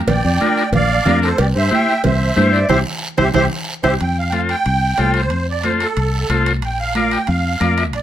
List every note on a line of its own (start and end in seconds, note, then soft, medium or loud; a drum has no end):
0.07 0.20 A#1 medium
0.07 0.69 D5 medium
0.07 0.70 G5 medium
0.07 cowbell loud
0.07 high conga soft
0.07 low conga medium
0.07 long guiro medium
0.24 0.37 F2 medium
0.41 0.63 D4 medium
0.41 0.63 F4 medium
0.41 0.64 A#4 medium
0.41 high conga medium
0.41 short guiro medium
0.57 short guiro medium
0.72 0.98 A#1 medium
0.72 1.19 D5 medium
0.72 1.20 F5 loud
0.72 cowbell medium
0.72 high conga soft
0.72 low conga medium
0.72 long guiro medium
1.05 1.32 F2 loud
1.05 1.28 D4 medium
1.05 1.29 F4 medium
1.05 1.29 A#4 medium
1.05 high conga medium
1.05 low conga medium
1.05 low timbale medium
1.05 short guiro medium
1.22 1.37 A4 medium
1.22 1.38 C5 medium
1.22 short guiro medium
1.38 1.52 C2 medium
1.38 1.46 G4 medium
1.38 1.47 D5 medium
1.38 cowbell loud
1.38 long guiro medium
1.55 1.68 G2 medium
1.55 1.70 C5 medium
1.55 1.71 E5 medium
1.71 1.94 E4 medium
1.71 1.94 G4 medium
1.71 1.94 C5 medium
1.71 2.02 E5 medium
1.71 2.03 G5 medium
1.71 high conga medium
1.71 short guiro medium
1.89 short guiro medium
2.04 2.30 C2 medium
2.04 2.65 C5 medium
2.04 2.66 E5 medium
2.04 cowbell medium
2.04 high conga soft
2.04 low conga medium
2.04 long guiro medium
2.36 2.63 G2 loud
2.36 2.59 E4 medium
2.36 2.59 G4 medium
2.36 2.54 C5 medium
2.36 2.60 C5 medium
2.36 high conga medium
2.36 short guiro medium
2.52 2.69 D5 loud
2.52 short guiro medium
2.69 2.81 C2 medium
2.69 2.80 E4 loud
2.69 2.79 G4 medium
2.69 2.80 G4 medium
2.69 2.79 C5 medium
2.69 2.77 C5 medium
2.69 2.80 C5 medium
2.69 2.80 E5 medium
2.69 low conga medium
2.69 high timbale medium
2.69 long guiro loud
3.18 3.31 C2 medium
3.18 3.29 E4 medium
3.18 3.28 G4 loud
3.18 3.29 G4 loud
3.18 3.29 C5 medium
3.18 3.26 C5 loud
3.18 3.29 C5 medium
3.18 3.29 E5 loud
3.18 low conga loud
3.18 high timbale loud
3.18 long guiro loud
3.34 3.46 C2 loud
3.34 3.45 E4 medium
3.34 3.45 G4 loud
3.34 3.46 G4 loud
3.34 3.45 C5 medium
3.34 3.43 C5 loud
3.34 3.46 C5 medium
3.34 3.46 E5 loud
3.34 low conga loud
3.34 high timbale loud
3.34 long guiro loud
3.83 3.96 C2 medium
3.83 3.94 E4 loud
3.83 3.94 G4 medium
3.83 3.94 C5 loud
3.83 3.94 C5 medium
3.83 3.92 C5 loud
3.83 3.94 E5 medium
3.83 low conga medium
3.83 high timbale loud
3.83 long guiro medium
3.99 4.53 F2 medium
3.99 4.18 G5 medium
3.99 high conga soft
3.99 high timbale medium
3.99 long guiro medium
4.19 4.30 F5 medium
4.30 4.55 F4 medium
4.30 4.56 A4 medium
4.30 4.56 C5 medium
4.30 4.33 G5 medium
4.30 high conga medium
4.30 high timbale medium
4.30 short guiro medium
4.34 4.41 F5 medium
4.49 5.11 G5 loud
4.49 high timbale medium
4.49 short guiro medium
4.66 4.92 C2 medium
4.66 high conga soft
4.66 high timbale medium
4.66 long guiro medium
4.98 5.31 C2 medium
4.98 5.21 F4 medium
4.98 5.21 A4 medium
4.98 5.22 C5 loud
4.98 high conga medium
4.98 high timbale medium
4.98 low timbale medium
4.98 short guiro medium
5.14 5.46 C5 medium
5.14 high timbale medium
5.14 short guiro medium
5.30 5.83 F2 medium
5.30 high conga soft
5.30 high timbale medium
5.30 long guiro medium
5.50 5.66 D5 medium
5.63 5.87 F4 medium
5.63 5.87 A4 medium
5.63 5.87 C5 medium
5.63 5.72 C5 medium
5.63 high conga medium
5.63 high timbale medium
5.63 short guiro medium
5.80 6.43 A4 medium
5.80 high timbale medium
5.80 short guiro medium
5.97 6.23 C2 medium
5.97 high conga soft
5.97 high timbale medium
5.97 long guiro medium
6.29 6.63 C2 medium
6.29 6.53 F4 medium
6.29 6.53 A4 medium
6.29 6.53 C5 medium
6.29 high conga medium
6.29 high timbale medium
6.29 short guiro medium
6.46 high timbale medium
6.46 short guiro medium
6.62 7.15 A#1 loud
6.62 6.79 G5 medium
6.62 high conga soft
6.62 high timbale medium
6.62 long guiro medium
6.80 6.94 F5 medium
6.95 7.19 F4 medium
6.95 7.19 A#4 medium
6.95 7.19 D5 medium
6.95 7.11 F5 medium
6.95 high conga medium
6.95 high timbale medium
6.95 short guiro medium
7.11 7.27 G5 medium
7.11 high timbale medium
7.11 short guiro medium
7.27 7.54 F2 medium
7.27 7.74 F5 medium
7.27 high conga soft
7.27 high timbale medium
7.27 long guiro medium
7.60 7.93 F2 medium
7.60 7.84 F4 medium
7.60 7.84 A#4 medium
7.60 7.84 D5 medium
7.60 high conga medium
7.60 high timbale medium
7.60 short guiro medium
7.78 7.85 E5 medium
7.78 high timbale medium
7.78 short guiro medium
7.93 8.02 A#1 medium
7.93 8.02 D5 medium
7.93 high conga soft
7.93 high timbale medium
7.93 long guiro medium